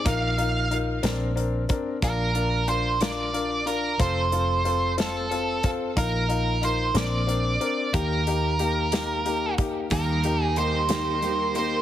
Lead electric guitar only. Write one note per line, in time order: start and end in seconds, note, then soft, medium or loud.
0.08 0.76 F5 loud
2.04 2.69 A#4 medium
2.69 2.99 C5 medium
3.02 3.69 D5 loud
3.67 4.00 A#4 medium
4.01 4.94 C5 loud
5.01 5.69 A4 medium
5.98 6.64 A#4 loud
6.65 6.97 C5 medium
6.97 7.97 D5 loud
7.94 9.54 A#4 medium
9.93 10.44 A#4 medium
10.44 10.58 G#4 medium
10.58 11.55 C5 medium
11.56 11.82 C5 medium